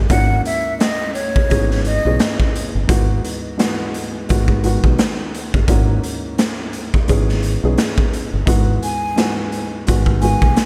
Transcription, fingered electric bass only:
0.10 G#1
1.51 G#1
2.05 B1
2.75 G1
2.89 G#1
4.30 G#1
4.84 B1
5.54 G1
5.68 G#1
7.10 G#1
7.63 B1
8.33 G1
8.47 G#1
9.89 G#1
10.42 B1

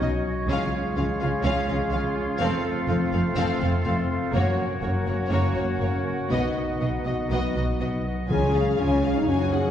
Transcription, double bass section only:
0.01 B1
0.49 C#2
0.97 C#2
1.21 C#2
1.44 C#2
1.69 C#2
1.93 C#2
2.41 F1
2.89 F1
3.12 F1
3.37 F1
3.62 F1
3.85 F1
4.34 F#1
4.82 F#1
5.07 F#1
5.31 F#1
5.55 F#1
5.81 F#1
6.31 B1
6.81 B1
7.06 B1
7.31 B1
7.57 B1
7.81 B1
8.30 C#2
8.80 C#2
9.28 F#1

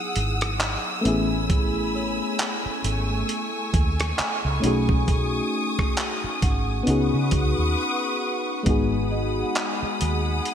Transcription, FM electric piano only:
Already playing: F#3 B3 D#4 E4 G#4
1.01 A3 B3 C#4
1.07 E4 G#4
4.60 A3 C#4 D#4
4.65 F#4 G#4
6.83 B3 C#4 D#4
6.89 F#4 G#4
8.63 G#3 B3 D#4
8.69 F#4 G#4

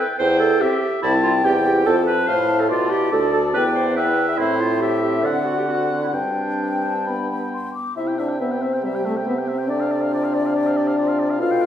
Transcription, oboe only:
Already playing: G5
0.18 G5
0.61 E5
1.03 A5
1.45 G5
2.28 F5
2.70 D5
3.12 D5
3.97 E5
4.39 C5
4.82 E5
5.25 F#5
6.13 G5
7.97 E5
8.07 G5
8.19 E5
8.29 G5
8.41 E5
8.51 G5
8.62 E5
8.74 G5
8.84 E5
8.95 G5
9.05 E5
9.17 G5
9.28 E5
9.39 G5
9.48 E5
9.58 G5
9.70 D5
9.80 F5
9.91 D5
10.01 F5
10.14 D5
10.24 F5
10.34 D5
10.46 F5
10.55 D5
10.67 F5
10.77 D5
10.87 F5
10.98 D5
11.08 F5
11.19 D5
11.30 F5
11.41 F5
11.51 G5
11.62 F5

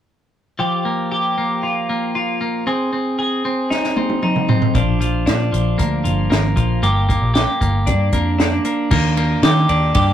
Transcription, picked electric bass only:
4.75 A#1
5.27 A#2
5.53 A#1
5.79 D2
6.05 G1
6.31 G#1
6.57 A#1
6.83 G1
7.22 A#1
7.61 G1
7.87 G2
8.13 F2
8.91 D#2
9.43 D#3
9.70 D#2
9.95 G2

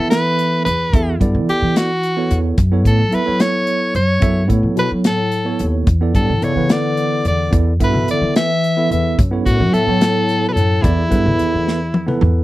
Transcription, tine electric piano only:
Already playing: B3
0.00 E4 A4 E5
0.93 B3 E4 A4 E5
1.20 B3 E4 A4 D5
2.17 B3 E4 A4 C#5
2.72 B3 E4 A4 C#5
3.11 B3 E4 A4 E5
3.25 B3 E4 A4 C#5
4.20 B3 E4 A4 E5
4.48 B3 E4 A4 C#5
5.45 B3 E4 A4 C#5
6.01 B3 E4 A4 D5
6.42 B3 E4 A4 D5
6.56 B3 E4 A4 B4
7.51 B3 E4 A4 D5
7.80 B3 E4 A4 E5
8.77 B3 E4 A4 E5
9.31 B3 E4 A4 C#5
9.72 B3 E4 A4 E5
9.87 B3 E4 A4 C#5
10.82 B3 E4 A4 D5
11.10 B3 E4 A4 B4
12.07 B3 E4 A4 B4

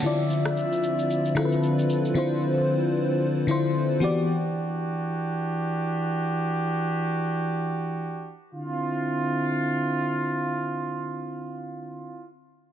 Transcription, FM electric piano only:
0.02 D3 C4 E4 F4 D5
1.35 D3 C4 E4 F4 A4
1.45 B4
2.14 D3 C4 E4 F4 C5
3.47 D3 C4 E4 F4
3.51 C5
4.00 E3 B3 F#4 G4 D5

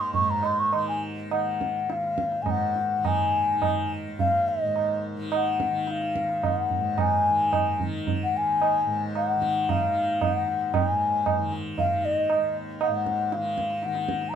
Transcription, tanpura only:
Already playing: D#2 G#2 D#3
0.17 G#2
0.73 D#3
1.30 D#3
1.86 D#2
2.42 G#2
2.98 D#3
3.53 D#3
4.07 D#2
4.62 G#2
5.16 D#3
5.70 D#3
6.23 D#2
6.77 G#2
7.29 D#3
7.81 D#3
8.33 D#2
8.85 G#2
9.36 D#3
9.87 D#3
10.37 D#2
10.89 G#2
11.39 D#3
11.88 D#3
12.37 D#2
12.88 G#2
13.36 D#3
13.85 D#3

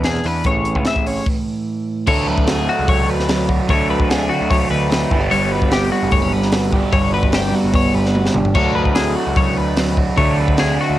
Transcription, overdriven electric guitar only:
2.07 D3 F#3 A3 D4
3.68 D3 F#3 A3 D4
5.12 G2 D3 G3 B3 D4
6.73 G2 D3 G3 B3 D4
8.55 D3 F#3 A3 D4
10.18 D3 F#3 A3 D4

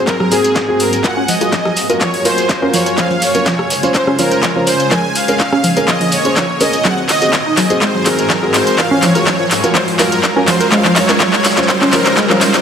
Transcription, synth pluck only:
0.07 F#3
0.20 F#3
0.56 F#3
1.17 C#4
1.28 F3
1.41 A#4
1.53 F3
1.65 F3
2.01 F3
2.62 C#4
2.73 F3
2.86 A#4
2.98 F3
3.10 F3
3.46 F3
4.07 C#4
4.19 F3
4.31 C5
4.43 F3
4.56 F3
4.91 F3
5.52 C#4
5.64 F3
5.77 A#4
5.88 F3
6.01 F3
6.36 F3
6.85 F#3
7.46 D#4
7.57 F#3
7.70 C5
7.82 G#3
7.94 F#3
8.30 F#3
8.91 C#4
9.03 F3
9.15 A#4
9.27 F#3
9.40 F3
9.75 F3
10.36 C#4
10.48 F3
10.60 A#4
10.72 G#3
10.85 F3
11.20 F3
11.81 C#4
11.93 F3
12.06 C5
12.17 G#3
12.30 F3

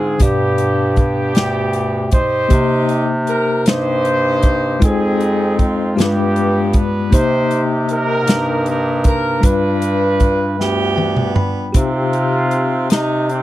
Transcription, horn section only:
Already playing: C4 F4 G#4
0.21 B3 D4 G4
0.99 B3 D4 G4
2.13 D#4 G4 C5
3.29 A#4
3.68 D#4 G4 C5
4.84 C4 D#4 G#4
5.61 F4
5.99 B3 D4 G4
6.76 B4
7.13 D#4 G4 C5
7.91 D#4 G4 A#4
8.69 A#4
9.08 A#4
9.45 D4 F4 B4
10.61 B3 D4 G4
11.76 C4 F4
12.91 D#4
13.28 C4 D#4 G4

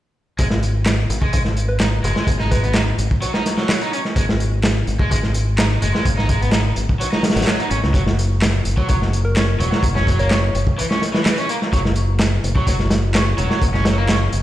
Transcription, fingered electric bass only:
0.39 G#1
1.09 G#1
1.34 G#1
2.04 F#1
2.27 G#1
2.98 G#1
4.16 G#1
4.87 G#1
5.11 G#1
5.82 F#1
6.05 G#1
6.77 G#1
7.36 G#1
7.71 G#1
7.83 C#2
7.94 F#1
8.66 F#1
8.90 F#1
9.60 E1
9.83 F#1
10.55 F#1
11.73 F#1
12.44 F#1
12.67 F#1
13.38 E1
13.62 F#1
14.32 F#1

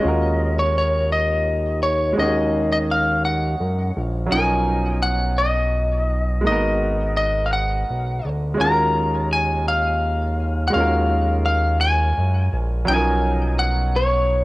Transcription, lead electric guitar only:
Already playing: D#5
0.59 C#5
0.78 C#5
1.12 D#5
1.83 C#5
2.19 D#5
2.72 D#5
2.91 F5
3.25 F#5
4.32 G#5
5.02 F#5
5.38 D#5
6.47 D#5
7.17 D#5
7.46 F5
7.53 F#5
8.61 A#5
9.33 G#5
9.68 F5
10.68 F#5
10.74 F5
11.46 F5
11.81 G#5
12.88 G#5
13.59 F#5
13.96 C#5

